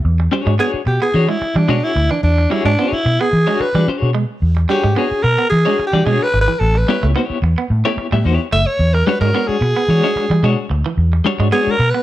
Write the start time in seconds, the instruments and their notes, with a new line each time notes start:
0.05 fingered electric bass E2
0.20 muted clean electric guitar stroke
0.32 clean electric guitar G3 D4 F#4 G#4 C#5
0.46 fingered electric bass G#2, clean electric guitar G#3
0.59 clean electric guitar B3 D4 F#4 G#4 C#5, alto saxophone G#4
0.74 muted fingered electric bass stroke
0.86 fingered electric bass B2, alto saxophone G4, muted clean electric guitar stroke
1.02 clean electric guitar B3, alto saxophone G#4
1.14 fingered electric bass E3, clean electric guitar D4 F#4 G#4 C#5
1.29 clean electric guitar G#3, alto saxophone E4
1.42 muted fingered electric bass stroke, muted clean electric guitar stroke
1.55 fingered electric bass E3, clean electric guitar G3, alto saxophone D4
1.68 fingered electric bass B2, clean electric guitar G#3 D4 F#4 G#4 C#5
1.84 alto saxophone E4
1.96 fingered electric bass D2, muted clean electric guitar stroke
2.10 clean electric guitar E3, alto saxophone D4
2.23 fingered electric bass E2, alto saxophone D4
2.38 muted clean electric guitar stroke
2.50 clean electric guitar G3 D4 F#4 G#4 C#5, alto saxophone E4
2.65 fingered electric bass G#2, clean electric guitar G#3, alto saxophone D4
2.78 clean electric guitar B3 D4 F#4 G#4 C#5
2.92 alto saxophone E4, muted fingered electric bass stroke
3.06 fingered electric bass B2, muted clean electric guitar stroke
3.21 clean electric guitar B3, alto saxophone G#4
3.33 fingered electric bass E3
3.47 clean electric guitar G#3 D4 F#4 G#4 C#5
3.60 alto saxophone B4, muted fingered electric bass stroke, muted clean electric guitar stroke
3.75 fingered electric bass E3, clean electric guitar G3 D4 F#4 G#4 D5
3.88 clean electric guitar D4 F#4 G#4 C#5, muted fingered electric bass stroke
4.02 fingered electric bass B2
4.15 clean electric guitar G#3
4.42 fingered electric bass E2
4.57 muted clean electric guitar stroke
4.69 clean electric guitar G3 D4 F#4 G#4 C#5, alto saxophone G4
4.84 fingered electric bass G#2, clean electric guitar G#3
4.96 clean electric guitar B3 D4 F#4 G#4 C#5, alto saxophone G#4
5.11 muted fingered electric bass stroke
5.23 fingered electric bass B2, alto saxophone A#4, muted clean electric guitar stroke
5.38 clean electric guitar B3
5.50 fingered electric bass E3, alto saxophone G#4
5.65 clean electric guitar G#3 D4 F#4 G#4 C#5
5.79 muted fingered electric bass stroke, muted clean electric guitar stroke
5.87 alto saxophone G4
5.93 fingered electric bass E3, clean electric guitar G3 D4 F#4 G#4 D5
6.05 fingered electric bass B2, clean electric guitar G#3 D4 F#4 G#4 C#5, alto saxophone G#4
6.23 alto saxophone B4
6.34 fingered electric bass G#1, muted clean electric guitar stroke
6.41 alto saxophone B4
6.48 clean electric guitar E3
6.59 fingered electric bass A1, alto saxophone A4
6.75 alto saxophone B4, muted clean electric guitar stroke
6.88 clean electric guitar G3 B3 E4 G4 C#5
7.03 fingered electric bass C#2, clean electric guitar A3
7.16 clean electric guitar B3 E4 G4 C#5
7.30 muted fingered electric bass stroke
7.42 fingered electric bass E2, muted clean electric guitar stroke
7.58 clean electric guitar B3
7.70 fingered electric bass A2
7.85 clean electric guitar A3 B3 E4 G4 C#5
7.97 muted fingered electric bass stroke, muted clean electric guitar stroke
8.12 fingered electric bass A2, clean electric guitar G3 B3 E4 G4 E5
8.24 fingered electric bass E2, clean electric guitar B3 E4 G4 C#5
8.52 fingered electric bass F#1, clean electric guitar A3, alto saxophone E5
8.66 alto saxophone C#5
8.79 fingered electric bass E2
8.94 alto saxophone A#4, muted clean electric guitar stroke
9.06 clean electric guitar G3 G#3 D4 F#4 C#5, alto saxophone B4
9.21 fingered electric bass G#2, clean electric guitar G#3, alto saxophone A#4
9.34 clean electric guitar G#3 B3 D4 F#4 C#5
9.48 alto saxophone G#4, muted fingered electric bass stroke
9.61 fingered electric bass B2, muted clean electric guitar stroke
9.76 clean electric guitar B3
9.88 fingered electric bass E3, clean electric guitar G#3 D4 F#4 C#5
10.03 clean electric guitar G#3 D4 F#4 C#5
10.16 muted fingered electric bass stroke, muted clean electric guitar stroke
10.30 fingered electric bass E3, clean electric guitar G3
10.43 fingered electric bass B2, clean electric guitar G#3 D4 F#4 C#5
10.70 fingered electric bass D2, muted clean electric guitar stroke
10.86 clean electric guitar E3
10.97 fingered electric bass E2
11.13 muted clean electric guitar stroke
11.25 clean electric guitar G3 G#3 D4 F#4 C#5
11.39 fingered electric bass G#2, clean electric guitar G#3
11.52 clean electric guitar G#3 B3 D4 F#4 C#5, alto saxophone G#4
11.67 muted fingered electric bass stroke
11.71 alto saxophone A#4
11.79 fingered electric bass B2, muted clean electric guitar stroke
11.90 alto saxophone B4
11.95 clean electric guitar B3